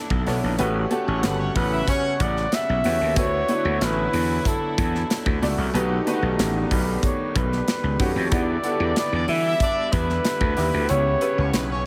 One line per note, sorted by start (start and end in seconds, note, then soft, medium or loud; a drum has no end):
0.00 0.57 A3 medium
0.00 0.26 B3 medium
0.00 0.56 B3 medium
0.00 0.26 D4 medium
0.00 0.57 D4 medium
0.00 0.27 E4 medium
0.00 0.57 E4 medium
0.00 0.27 A4 medium
0.00 0.27 C#5 medium
0.10 0.23 B1 medium
0.10 kick medium
0.26 0.39 B1 medium
0.26 0.51 B3 medium
0.26 0.51 D4 medium
0.26 0.51 E4 medium
0.26 0.51 A4 medium
0.26 0.51 C#5 medium
0.26 snare soft
0.26 open hi-hat medium
0.44 0.56 A#1 medium
0.57 0.84 A1 loud
0.57 3.13 C#3 medium
0.57 3.14 G3 medium
0.57 0.83 A3 medium
0.57 5.70 B3 medium
0.57 0.83 C#4 medium
0.57 0.83 F#4 medium
0.57 0.83 G4 medium
0.57 0.83 B4 loud
0.57 3.14 F#5 medium
0.57 closed hi-hat loud
0.91 1.87 A3 medium
0.91 1.87 C#4 medium
0.91 1.88 F#4 medium
0.91 1.87 G4 medium
0.91 1.88 A4 loud
0.91 closed hi-hat medium
1.07 1.26 A1 loud
1.07 1.20 C#4 medium
1.07 1.20 C#5 medium
1.22 1.49 G1 loud
1.22 1.36 B3 medium
1.22 1.36 B4 medium
1.22 snare loud
1.22 closed hi-hat loud
1.39 1.53 C#4 medium
1.39 1.52 C#5 medium
1.55 1.81 A1 medium
1.55 1.91 B4 medium
1.55 kick medium
1.55 open hi-hat medium
1.72 1.85 E4 medium
1.72 1.85 E5 loud
1.88 2.14 C#4 loud
1.88 2.14 C#5 loud
1.88 2.24 C#5 loud
1.88 kick medium
1.88 closed hi-hat loud
2.20 2.45 A1 medium
2.20 2.56 D5 loud
2.20 kick loud
2.20 closed hi-hat medium
2.37 snare soft
2.52 3.18 E5 loud
2.52 snare loud
2.52 closed hi-hat medium
2.69 2.81 B1 medium
2.84 2.97 E2 loud
2.84 3.08 A3 medium
2.84 3.09 C#4 medium
2.84 3.09 F#4 medium
2.84 3.09 G4 medium
2.84 3.09 B4 medium
2.84 snare soft
2.84 open hi-hat medium
3.01 3.17 D#2 medium
3.16 3.41 D2 loud
3.16 5.72 D3 medium
3.16 5.72 F#3 medium
3.16 3.41 A3 medium
3.16 3.41 D4 medium
3.16 5.72 E4 loud
3.16 3.41 E4 medium
3.16 3.41 F#4 medium
3.16 3.41 B4 medium
3.16 3.86 C#5 loud
3.16 kick loud
3.16 closed hi-hat loud
3.48 4.45 A3 medium
3.48 4.45 D4 medium
3.48 4.45 E4 medium
3.48 4.45 F#4 medium
3.48 4.45 B4 medium
3.48 closed hi-hat medium
3.65 3.77 D2 loud
3.81 4.06 A1 medium
3.81 4.49 B4 loud
3.81 snare loud
3.81 closed hi-hat loud
4.13 4.38 E2 loud
4.13 open hi-hat medium
4.45 5.43 A4 medium
4.45 kick medium
4.45 closed hi-hat loud
4.78 5.03 E2 medium
4.78 kick loud
4.78 closed hi-hat medium
4.95 snare soft
5.10 snare loud
5.10 closed hi-hat medium
5.26 5.39 D2 medium
5.26 kick medium
5.42 5.55 C#2 medium
5.42 5.66 A3 medium
5.42 5.66 D4 medium
5.42 5.66 E4 medium
5.42 5.66 F#4 medium
5.42 5.67 D5 medium
5.42 snare soft
5.42 open hi-hat medium
5.58 5.70 C2 medium
5.74 5.99 B1 loud
5.74 8.30 D#3 medium
5.74 8.29 G3 medium
5.74 5.98 A3 medium
5.74 8.30 A3 medium
5.74 8.30 B3 medium
5.74 5.98 D#4 medium
5.74 5.99 F#4 medium
5.74 5.99 G4 medium
5.74 5.99 B4 loud
5.74 closed hi-hat loud
6.07 7.03 A3 loud
6.07 6.13 D4 medium
6.07 7.03 F#4 medium
6.07 7.03 G4 medium
6.07 7.03 B4 loud
6.07 closed hi-hat medium
6.13 7.06 D#4 medium
6.22 6.35 B1 medium
6.39 6.64 A1 medium
6.39 snare loud
6.39 closed hi-hat loud
6.71 6.96 B1 medium
6.71 7.06 B4 medium
6.71 kick medium
6.71 open hi-hat medium
7.03 7.39 C#5 medium
7.03 kick medium
7.03 closed hi-hat medium
7.36 7.60 B1 medium
7.36 8.25 B4 medium
7.36 kick loud
7.36 closed hi-hat medium
7.52 snare soft
7.68 snare loud
7.68 closed hi-hat medium
7.83 7.96 C#2 medium
7.99 8.12 F#2 medium
7.99 8.24 A3 medium
7.99 8.24 D#4 medium
7.99 8.24 F#4 medium
7.99 8.24 G4 medium
7.99 8.24 C#5 medium
7.99 kick loud
7.99 snare soft
7.99 open hi-hat medium
8.16 8.28 F2 loud
8.26 8.34 C#5 medium
8.31 8.56 E2 loud
8.31 10.86 D3 medium
8.31 11.86 G3 medium
8.31 11.86 B3 medium
8.31 8.56 B3 medium
8.31 8.56 D4 medium
8.31 11.86 E4 medium
8.31 8.56 E4 medium
8.31 8.56 G4 medium
8.31 8.56 D5 medium
8.31 8.97 D5 loud
8.31 kick loud
8.31 closed hi-hat loud
8.63 9.60 B3 medium
8.63 9.60 D4 medium
8.63 9.60 E4 medium
8.63 8.71 F#4 medium
8.63 9.60 A4 medium
8.63 closed hi-hat medium
8.71 9.64 G4 medium
8.80 8.92 E2 loud
8.80 8.94 D4 medium
8.80 8.94 D5 medium
8.96 9.10 B3 medium
8.96 9.10 B4 medium
8.96 9.27 D5 loud
8.96 snare loud
8.96 closed hi-hat loud
9.12 9.25 E2 medium
9.12 9.26 D4 medium
9.12 9.26 D5 medium
9.28 9.53 E3 loud
9.28 9.94 E5 loud
9.28 open hi-hat medium
9.46 9.58 E4 loud
9.46 9.58 E5 loud
9.60 9.88 D4 loud
9.60 9.88 D5 loud
9.60 kick medium
9.60 closed hi-hat medium
9.92 10.18 E2 medium
9.92 10.92 B4 loud
9.92 kick loud
9.92 closed hi-hat medium
10.09 snare soft
10.25 snare loud
10.25 closed hi-hat medium
10.41 10.53 D2 medium
10.41 kick medium
10.56 10.70 D#2 medium
10.56 10.81 B3 medium
10.56 10.81 D4 medium
10.56 10.81 E4 medium
10.56 10.81 G4 medium
10.56 10.81 D5 medium
10.56 snare soft
10.56 open hi-hat medium
10.74 10.86 D2 loud
10.89 11.15 C#2 loud
10.89 11.86 C#3 medium
10.89 11.13 B3 medium
10.89 11.13 C#4 medium
10.89 11.13 E4 medium
10.89 11.13 G4 medium
10.89 11.13 C#5 medium
10.89 11.59 C#5 loud
10.89 closed hi-hat loud
11.21 11.86 C#3 medium
11.21 11.86 B3 medium
11.21 11.86 E4 medium
11.21 11.86 G4 medium
11.21 11.86 B4 medium
11.21 closed hi-hat medium
11.38 11.50 C#2 loud
11.38 11.50 C#4 medium
11.38 11.51 C#5 medium
11.54 11.86 B1 medium
11.54 11.66 B3 medium
11.54 11.66 B4 medium
11.54 snare loud
11.54 closed hi-hat loud
11.71 11.83 C#4 medium
11.71 11.83 C#5 medium
11.79 11.86 C#5 medium